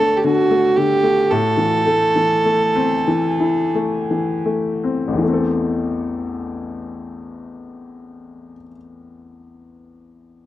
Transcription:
Already playing: upright piano D3, fiddle A4
0.00 upright piano A3
0.17 fiddle G4
0.23 upright piano D3, fiddle F#4
0.51 upright piano A3
0.76 upright piano D3, fiddle G4
1.03 upright piano A3
1.31 upright piano A2, fiddle A4
1.57 upright piano E3
1.86 upright piano A3
2.16 upright piano E3
2.45 upright piano A3
2.75 upright piano C4
3.08 upright piano E3
3.40 upright piano E4
3.75 upright piano A3
4.11 upright piano E3
4.46 upright piano A3
4.84 upright piano C4
5.08 upright piano A1
5.13 upright piano E2
5.18 upright piano E3
5.23 upright piano A3
5.28 upright piano C4
5.33 upright piano A4

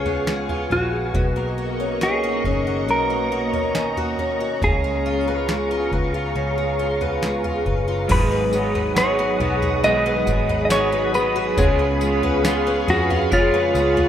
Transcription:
Already playing: picked electric bass C#2, twelve-string acoustic guitar C#3 G#3 F4, clean electric guitar G#4, string machine G#4 F5 G#5 C#6
0.05 twelve-string acoustic guitar B3, floor tom
0.27 twelve-string acoustic guitar G#3, snare
0.49 twelve-string acoustic guitar F4, floor tom
0.70 picked electric bass A#1, twelve-string acoustic guitar B3, clean electric guitar F#4, floor tom
1.14 picked electric bass B1, twelve-string acoustic guitar B2, string machine A#3 D#5 A#5 C#6, kick, floor tom
1.36 twelve-string acoustic guitar A#3
1.58 twelve-string acoustic guitar F#4
1.80 twelve-string acoustic guitar C#4
2.01 twelve-string acoustic guitar D#3, clean electric guitar G#4, glockenspiel C#6, snare
2.24 twelve-string acoustic guitar F#4
2.44 picked electric bass F#1, twelve-string acoustic guitar C#4, kick, floor tom
2.67 twelve-string acoustic guitar F#4
2.88 picked electric bass B1, twelve-string acoustic guitar B2, clean electric guitar A#4
3.10 twelve-string acoustic guitar A#3
3.32 twelve-string acoustic guitar F#4
3.53 twelve-string acoustic guitar C#4, floor tom
3.75 twelve-string acoustic guitar D#3, glockenspiel G#5, snare
3.97 twelve-string acoustic guitar F#4, floor tom
4.18 twelve-string acoustic guitar C#4, floor tom
4.41 twelve-string acoustic guitar F#4
4.61 picked electric bass C#2, twelve-string acoustic guitar C#3, string machine G#4 F5 C#6, clean electric guitar G#4, kick, floor tom
4.84 twelve-string acoustic guitar G#3
5.06 twelve-string acoustic guitar F4
5.28 twelve-string acoustic guitar B3
5.49 twelve-string acoustic guitar G#3, snare
5.71 twelve-string acoustic guitar F4
5.92 picked electric bass C#2, twelve-string acoustic guitar B3, kick, floor tom
6.14 twelve-string acoustic guitar F4
6.35 picked electric bass C#2, twelve-string acoustic guitar C#3
6.58 twelve-string acoustic guitar G#3
6.79 twelve-string acoustic guitar F4
7.01 twelve-string acoustic guitar B3, floor tom
7.22 twelve-string acoustic guitar G#3, snare
7.44 twelve-string acoustic guitar F4, floor tom
7.66 picked electric bass F#1, twelve-string acoustic guitar B3, kick, floor tom
7.88 twelve-string acoustic guitar F4
8.08 picked electric bass G#1, clean electric guitar G#2 D#3 F#3 B3 D#4 G#4 B4, twelve-string acoustic guitar G#2, string machine G#4 F#5 B5 D#6, glockenspiel B5, kick, floor tom, crash, tambourine
8.31 twelve-string acoustic guitar B3
8.51 twelve-string acoustic guitar F#3, clean electric guitar B3 D#4 G#4, tambourine
8.57 clean electric guitar F#3
8.75 twelve-string acoustic guitar B3, floor tom
8.95 clean electric guitar F#3 B3 D#4 C#5, twelve-string acoustic guitar F#4, snare, tambourine
9.00 clean electric guitar G#4
9.19 twelve-string acoustic guitar B3
9.39 picked electric bass B1, twelve-string acoustic guitar F#3, clean electric guitar B3 D#4 G#4, floor tom
9.44 clean electric guitar F#3
9.62 twelve-string acoustic guitar F#4, floor tom
9.83 clean electric guitar G#2 D#3 F#3 B3 D#4 G#4 D#5, twelve-string acoustic guitar G#2, glockenspiel G#5, tambourine
10.06 twelve-string acoustic guitar B3
10.26 picked electric bass G#1, twelve-string acoustic guitar F#3, clean electric guitar B3 D#4 G#4, kick, tambourine
10.31 clean electric guitar F#3
10.49 twelve-string acoustic guitar B3, floor tom
10.65 clean electric guitar D#5
10.70 clean electric guitar F#3 B3 D#4 C#5, twelve-string acoustic guitar F#4, snare, tambourine
10.75 clean electric guitar G#4
10.92 twelve-string acoustic guitar B3
11.13 twelve-string acoustic guitar F#3, clean electric guitar B3 D#4 G#4 B4, tambourine
11.18 clean electric guitar F#3
11.36 twelve-string acoustic guitar F#4
11.57 picked electric bass C#2, clean electric guitar C#3 G#3 B3 F4 G#4, twelve-string acoustic guitar C#3, string machine F5 C#6, kick, floor tom, tambourine
11.79 twelve-string acoustic guitar B3
11.99 twelve-string acoustic guitar G#3, clean electric guitar F4 G#4, tambourine
12.05 clean electric guitar B3
12.23 twelve-string acoustic guitar B3, floor tom
12.43 clean electric guitar G#3 B3 F4, twelve-string acoustic guitar F4, snare, tambourine
12.48 clean electric guitar G#4
12.67 twelve-string acoustic guitar B3
12.87 picked electric bass F2, twelve-string acoustic guitar G#3, clean electric guitar F#4 G#4, floor tom
12.92 clean electric guitar B3
13.10 twelve-string acoustic guitar F4, floor tom
13.30 clean electric guitar C#3 G#3 B3 F4 G#4, twelve-string acoustic guitar C#3, glockenspiel B6, kick, tambourine
13.54 twelve-string acoustic guitar B3
13.74 picked electric bass C#2, twelve-string acoustic guitar G#3, clean electric guitar F4 G#4, tambourine
13.79 clean electric guitar B3
13.97 twelve-string acoustic guitar B3, floor tom

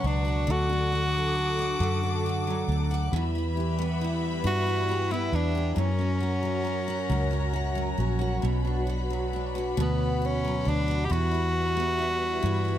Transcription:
Already playing: steel-string acoustic guitar B2 F#3 F#4, string section B4 F#5 C#6
0.04 fingered electric bass C#2, steel-string acoustic guitar D4, tenor saxophone D4
0.25 steel-string acoustic guitar F#4
0.47 fingered electric bass D2, steel-string acoustic guitar D3, tenor saxophone F#4, string section A4 D6
0.69 steel-string acoustic guitar D4
0.92 steel-string acoustic guitar F#4
1.15 steel-string acoustic guitar F#3
1.35 steel-string acoustic guitar D4
1.59 steel-string acoustic guitar F#4
1.80 fingered electric bass F#2, steel-string acoustic guitar D3
2.03 steel-string acoustic guitar D4
2.26 steel-string acoustic guitar F#4
2.47 steel-string acoustic guitar F#3
2.68 fingered electric bass D2, steel-string acoustic guitar D4
2.91 steel-string acoustic guitar F#4
3.12 fingered electric bass E2, steel-string acoustic guitar E3, string section G3 B4 E5 B5
3.35 steel-string acoustic guitar E4
3.57 steel-string acoustic guitar G4
3.79 steel-string acoustic guitar B3
4.01 steel-string acoustic guitar E4
4.44 fingered electric bass G2, steel-string acoustic guitar E3, tenor saxophone F#4
4.67 steel-string acoustic guitar E4
4.89 steel-string acoustic guitar G4
5.11 steel-string acoustic guitar B3, tenor saxophone E4
5.32 fingered electric bass E2, tenor saxophone D4, steel-string acoustic guitar E4
5.55 steel-string acoustic guitar G4
5.73 steel-string acoustic guitar F#2, fingered electric bass F#2, tenor saxophone D4, string section F#4 A#4 C#5 A#5
5.79 tenor saxophone C#4
5.99 steel-string acoustic guitar C#4
6.20 steel-string acoustic guitar F#4
6.43 steel-string acoustic guitar F#3
6.64 steel-string acoustic guitar C#4
6.88 steel-string acoustic guitar F#4
7.10 fingered electric bass C#2, steel-string acoustic guitar F#2
7.31 steel-string acoustic guitar C#4
7.53 steel-string acoustic guitar F#4
7.75 steel-string acoustic guitar F#3
7.98 fingered electric bass A#1, steel-string acoustic guitar C#4
8.19 steel-string acoustic guitar F#4
8.42 fingered electric bass B1, steel-string acoustic guitar B2, string section B4 B5
8.65 steel-string acoustic guitar D4
8.87 steel-string acoustic guitar F#4
9.10 steel-string acoustic guitar F#3
9.33 steel-string acoustic guitar D4
9.55 steel-string acoustic guitar F#4
9.77 fingered electric bass D2, steel-string acoustic guitar B2
9.82 tenor saxophone B3
10.22 tenor saxophone C#4, steel-string acoustic guitar F#4
10.45 steel-string acoustic guitar F#3
10.65 fingered electric bass D2, steel-string acoustic guitar D4, tenor saxophone D4
10.88 steel-string acoustic guitar F#4
11.05 tenor saxophone G4
11.10 fingered electric bass E2, steel-string acoustic guitar E3, string section G3 B4 E5, tenor saxophone F#4
11.31 steel-string acoustic guitar E4
11.77 steel-string acoustic guitar B3
11.99 steel-string acoustic guitar E4
12.43 fingered electric bass G2, steel-string acoustic guitar E3
12.65 steel-string acoustic guitar E4

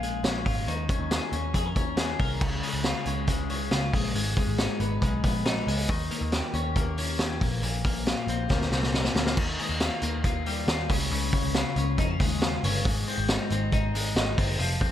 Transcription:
Already playing: picked electric bass A#1, clean electric guitar A#2 C#4 F4
0.03 clean electric guitar G#3, closed hi-hat
0.24 picked electric bass A#1, clean electric guitar C#4, snare, closed hi-hat
0.46 picked electric bass G#1, clean electric guitar F4, kick, open hi-hat
0.67 picked electric bass D#2, clean electric guitar D#3, closed hi-hat
0.89 clean electric guitar C#4, kick, closed hi-hat
1.00 picked electric bass D#2
1.11 clean electric guitar G#4, snare, closed hi-hat
1.32 picked electric bass D#2, clean electric guitar C#4, closed hi-hat
1.54 picked electric bass F2, clean electric guitar G#4, kick, closed hi-hat
1.66 clean electric guitar A#4
1.76 picked electric bass D#2, clean electric guitar C#4, kick, closed hi-hat
1.97 clean electric guitar G#4, snare, closed hi-hat
2.20 picked electric bass C2, clean electric guitar A#4, kick, open hi-hat
2.41 picked electric bass C#2, clean electric guitar C#3, kick, crash
2.63 clean electric guitar G#3, hi-hat pedal, open hi-hat
2.74 picked electric bass C#2
2.84 clean electric guitar F4, snare, hi-hat pedal, open hi-hat
3.05 picked electric bass C#2, clean electric guitar C#4, hi-hat pedal, open hi-hat
3.27 clean electric guitar G#3, kick, hi-hat pedal, open hi-hat
3.49 clean electric guitar C#4, hi-hat pedal, open hi-hat
3.71 picked electric bass C#2, clean electric guitar F4, snare, hi-hat pedal, open hi-hat
3.93 picked electric bass A#1, clean electric guitar G#3, kick, hi-hat pedal, open hi-hat
4.15 picked electric bass G#1, clean electric guitar G#2, hi-hat pedal, open hi-hat
4.37 clean electric guitar G#3, kick, hi-hat pedal, open hi-hat
4.47 picked electric bass G#1
4.58 clean electric guitar D#4, snare, hi-hat pedal, open hi-hat
4.80 picked electric bass G#1, clean electric guitar B3, hi-hat pedal, open hi-hat
5.02 picked electric bass B1, clean electric guitar G#3, kick, hi-hat pedal, open hi-hat
5.23 picked electric bass A#1, clean electric guitar B3, kick, hi-hat pedal, open hi-hat
5.45 clean electric guitar D#4, snare, hi-hat pedal, open hi-hat
5.67 picked electric bass C#2, clean electric guitar G#3, hi-hat pedal, open hi-hat
5.89 picked electric bass D#2, clean electric guitar D#3, kick, hi-hat pedal, open hi-hat
6.11 clean electric guitar A#3, hi-hat pedal, open hi-hat
6.21 picked electric bass D#2
6.32 clean electric guitar G4, snare, hi-hat pedal, open hi-hat
6.53 picked electric bass D#2, clean electric guitar C#4, hi-hat pedal, open hi-hat
6.76 clean electric guitar A#3, kick, hi-hat pedal, open hi-hat
6.97 clean electric guitar C#4, hi-hat pedal, open hi-hat
7.19 picked electric bass D#2, clean electric guitar G4, snare, hi-hat pedal, open hi-hat
7.41 picked electric bass A#1, clean electric guitar A#2, kick, hi-hat pedal, open hi-hat
7.62 picked electric bass A#1, clean electric guitar A#2, hi-hat pedal, open hi-hat
7.85 picked electric bass A#1, clean electric guitar A#3, kick, hi-hat pedal, open hi-hat
8.06 clean electric guitar F4, snare, hi-hat pedal, open hi-hat
8.27 picked electric bass A#1, clean electric guitar C4, hi-hat pedal, open hi-hat
8.50 picked electric bass D2, clean electric guitar A#3, kick, snare
8.61 snare
8.71 picked electric bass C2, clean electric guitar C4, snare
8.83 snare
8.94 clean electric guitar D#4, snare
9.04 clean electric guitar F4, snare
9.15 picked electric bass D2, clean electric guitar A#3, snare
9.26 snare
9.37 picked electric bass D#2, clean electric guitar D#3, kick, crash
9.59 clean electric guitar G#3, hi-hat pedal, open hi-hat
9.69 picked electric bass D#2, clean electric guitar A#3
9.80 clean electric guitar F4, snare, hi-hat pedal, open hi-hat
10.02 picked electric bass D#2, clean electric guitar A#3, hi-hat pedal, open hi-hat
10.24 clean electric guitar F4, kick, hi-hat pedal, open hi-hat
10.46 clean electric guitar G3, hi-hat pedal, open hi-hat
10.67 picked electric bass D#2, clean electric guitar F4, snare, hi-hat pedal, open hi-hat
10.89 picked electric bass C#2, clean electric guitar C#3, kick, hi-hat pedal, open hi-hat
11.11 picked electric bass C#2, clean electric guitar C#3, hi-hat pedal, open hi-hat
11.33 clean electric guitar C#4, kick, hi-hat pedal, open hi-hat
11.43 picked electric bass C#2
11.54 clean electric guitar F4, snare, hi-hat pedal, open hi-hat
11.76 picked electric bass C#2, clean electric guitar C#4, hi-hat pedal, open hi-hat
11.98 picked electric bass F2, clean electric guitar D#4, kick, hi-hat pedal, open hi-hat
12.10 clean electric guitar F4
12.20 picked electric bass D#2, clean electric guitar G#3, kick, hi-hat pedal, open hi-hat
12.41 clean electric guitar F4, snare, hi-hat pedal, open hi-hat
12.63 picked electric bass G1, clean electric guitar C#4, hi-hat pedal, open hi-hat
12.85 picked electric bass G#1, clean electric guitar G#2, kick, hi-hat pedal, open hi-hat
13.07 clean electric guitar C4, hi-hat pedal, open hi-hat
13.18 picked electric bass G#1
13.28 clean electric guitar D#4, snare, hi-hat pedal, open hi-hat
13.50 picked electric bass G#1, clean electric guitar C4, hi-hat pedal, open hi-hat
13.72 clean electric guitar D#4, kick, hi-hat pedal, open hi-hat
13.95 clean electric guitar G#3, hi-hat pedal, open hi-hat
14.16 picked electric bass G#1, clean electric guitar D#4, snare, hi-hat pedal, open hi-hat
14.38 picked electric bass G1, clean electric guitar C4, kick, hi-hat pedal, open hi-hat
14.59 picked electric bass F1, clean electric guitar F3, hi-hat pedal, open hi-hat
14.81 clean electric guitar C4, kick, hi-hat pedal, open hi-hat

